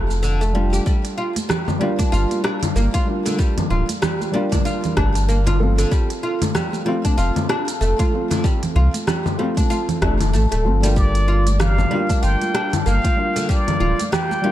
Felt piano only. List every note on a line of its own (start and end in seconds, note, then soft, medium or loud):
0.00 0.50 F3 medium
0.00 0.51 A3 medium
0.00 0.52 C4 medium
0.00 0.52 F4 loud
0.53 1.17 G3 medium
0.53 1.18 D4 medium
0.53 1.18 F4 loud
1.79 3.03 G3 loud
1.79 3.04 A#3 loud
1.79 3.04 D4 medium
1.79 3.05 F4 loud
3.06 4.30 G3 medium
3.06 4.30 A#3 medium
3.06 4.31 D4 medium
3.10 4.32 F4 medium
4.32 5.56 G3 loud
4.32 5.56 A#3 medium
4.32 5.57 D4 loud
4.36 5.58 F4 loud
5.58 6.82 F3 medium
5.58 6.84 C4 medium
5.58 6.83 A4 medium
5.63 6.84 F4 loud
6.85 8.09 F3 loud
6.85 8.09 A3 medium
6.85 8.10 C4 loud
6.85 8.11 F4 loud
8.11 9.35 F3 medium
8.11 9.36 A3 medium
8.11 9.36 C4 medium
8.15 9.37 F4 medium
9.38 9.99 F3 loud
9.38 9.99 A3 medium
9.38 10.00 C4 medium
9.38 10.00 F4 loud
10.01 10.15 F3 medium
10.01 10.15 A3 medium
10.01 10.15 C4 medium
10.01 10.16 D4 medium
10.64 10.79 F3 medium
10.64 10.79 A3 medium
10.64 10.79 C4 medium
10.64 10.80 F4 medium
10.81 11.87 G3 medium
10.81 11.88 A#3 medium
10.81 11.89 D4 medium
10.86 11.89 F4 loud
11.89 13.14 G3 loud
11.89 13.14 A#3 medium
11.89 13.15 D4 medium
11.93 13.16 F4 loud
13.16 14.40 G3 medium
13.16 14.41 A#3 medium
13.16 14.41 D4 medium
13.16 14.42 F4 loud
14.42 14.52 G3 loud
14.42 14.52 A#3 medium
14.42 14.52 D4 medium
14.42 14.52 F4 loud